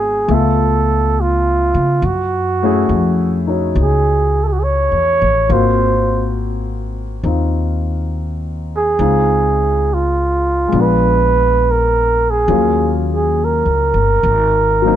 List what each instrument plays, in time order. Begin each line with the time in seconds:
Already playing: upright bass G#1, grand piano G#3 B3 D4 F#4, muted trumpet G#4
0.28 upright bass C#2, grand piano A3 B3 E5
0.32 grand piano F4, muted trumpet A4
1.21 muted trumpet F4
1.74 upright bass C#3
2.02 upright bass F#2, muted trumpet F#4
2.63 grand piano A3 C#4 E4 G#4
2.89 upright bass F2
3.47 grand piano D#4 F#4 C#5
3.75 upright bass C#2
3.81 muted trumpet G#4
4.43 muted trumpet A4
4.47 muted trumpet G#4
4.53 muted trumpet F#4
4.59 muted trumpet G#4
4.64 muted trumpet C#5
4.92 upright bass E2
5.22 upright bass A1
5.49 upright bass G#1, grand piano A#3 C4 F4 F#4, muted trumpet C5
7.23 upright bass D#2, grand piano C4 D#4 F4
8.76 muted trumpet G#4
8.99 upright bass C#2, grand piano G#3 C4 D#4 F4
9.94 muted trumpet F4
10.68 grand piano G#3 B3
10.72 upright bass A#1, grand piano D4
10.79 grand piano F4, muted trumpet B4
11.71 muted trumpet A#4
12.30 muted trumpet G#4
12.48 upright bass D#2, grand piano F#3 A#3 C#4 F4
13.14 muted trumpet G#4
13.44 muted trumpet A#4
13.66 upright bass C#2
13.94 upright bass G1
14.23 upright bass G#1
14.82 grand piano F#3 A#3 C4
14.87 grand piano D#4